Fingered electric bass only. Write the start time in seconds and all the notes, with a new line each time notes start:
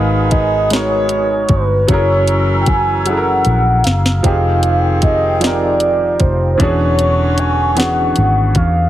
Already playing: G#1
1.50 G1
1.89 F#1
3.46 A#1
3.86 F#1
4.25 F1
6.21 F1
6.60 E1
8.18 G#1
8.56 E2